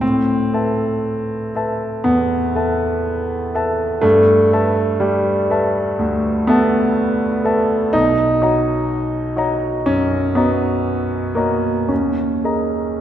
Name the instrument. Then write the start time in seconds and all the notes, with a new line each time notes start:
grand piano
0.01 A2 C4
0.53 A4 B4 E5 A5
1.55 A4 B4 E5 A5
2.04 E2 B3
2.55 A4 B4 E5 A5
3.54 A4 B4 E5 A5
4.01 G2 A3
4.53 A4 B4 E5 A5
5.00 G3
5.50 A4 B4 E5 A5
5.99 D2
6.47 B3 A4 B4 E5 A5
7.44 A4 B4 E5 A5
7.93 B1 D#4
8.42 F#4 C#5 D#5 A#5
9.36 F#4 C#5 D#5 A#5
9.86 F#2 C#4
10.35 B3 F#4 C#5 D#5 A#5
11.35 A#3 F#4 C#5 D#5 A#5
11.89 D#2 C#4
12.44 G#4 A#4 D#5 A#5